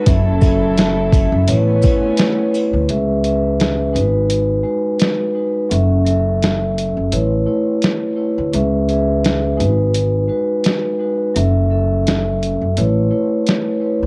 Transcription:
0.05 F#1 F#3 C#4 E4 A4 E5, kick, closed hi-hat, sleigh bells
0.40 F#3 C#4 A4 E5, kick, shaker, sleigh bells
0.77 snare, closed hi-hat, sleigh bells
1.12 kick, closed hi-hat, shaker, sleigh bells
1.32 F#1
1.47 A1 A3 B3 C#4 E4 B4 C#5, closed hi-hat, sleigh bells
1.81 A3 E4 B4 C#5, kick, shaker, sleigh bells
2.17 A3 E4 B4 C#5, snare, closed hi-hat, sleigh bells
2.51 A3 E4 B4 C#5, shaker, sleigh bells
2.73 D2
2.88 C#2 C#4 G#4 B4 E5, closed hi-hat
3.24 C#4 G#4 B4 E5, closed hi-hat
3.60 snare, closed hi-hat
3.92 G#1 G#3 D#4 F#4 B4, closed hi-hat
4.30 closed hi-hat
4.63 G#3 D#4 F#4 B4
4.99 G#3 D#4 F#4 B4, snare, closed hi-hat
5.35 G#3 D#4 F#4 B4
5.69 F#1 F#3 C#4 A4 E5, closed hi-hat
6.05 F#3 C#4 A4 E5, closed hi-hat
6.42 snare, closed hi-hat
6.78 closed hi-hat
6.97 F#1
7.12 A1 A3 E4 B4 C#5, closed hi-hat
7.46 A3 E4 B4 C#5
7.82 A3 E4 B4 C#5, snare, closed hi-hat
8.15 A3 E4 B4 C#5
8.38 D2
8.53 C#2 C#4 G#4 B4 E5, closed hi-hat
8.88 C#4 G#4 B4 E5, closed hi-hat
9.25 snare, closed hi-hat
9.57 G#1 G#3 D#4 F#4 B4, closed hi-hat
9.95 closed hi-hat
10.28 G#3 D#4 F#4 B4
10.63 G#3 D#4 F#4 B4, snare, closed hi-hat
10.99 G#3 D#4 F#4 B4
11.34 F#1 F#3 C#4 A4 E5, closed hi-hat
11.70 F#3 C#4 A4 E5
12.07 snare, closed hi-hat
12.43 closed hi-hat
12.61 F#1
12.77 A1 A3 E4 B4 C#5, closed hi-hat
13.11 A3 E4 B4 C#5
13.47 A3 E4 B4 C#5, snare, closed hi-hat
13.80 A3 E4 B4 C#5
14.03 D2

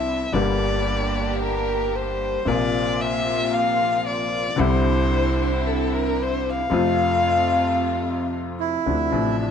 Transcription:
Already playing: C2 C3 D3 G3 C4 D4 E4 E5
0.32 G1 G2 D3 G3 A#3 D4 G4 D5
1.42 A#4
1.96 C5
2.45 A#1 A#2 C3 F3 A#3 C4 F4 D5
3.01 E5
3.53 F5
4.07 D5
4.56 C2 C3 D3 G3 C4 D4 E4 C5
5.67 A4
5.93 A#4
6.23 C5
6.49 F5
6.70 F2 C3 F3 A3 C4 F4
8.60 E4
8.85 D2 C3 D3 F3 A3 D4 E5
9.10 A1 A2 C3 F3 A3
9.14 D4
9.41 D4

